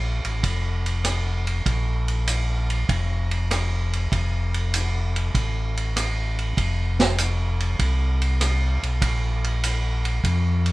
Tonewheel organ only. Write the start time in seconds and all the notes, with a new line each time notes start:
Already playing: A#1
0.25 A1
0.43 F1
1.66 A#1
2.89 F1
4.12 F1
5.35 A1
6.57 F1
7.79 C2
8.83 B1
9.02 A#1
10.24 F2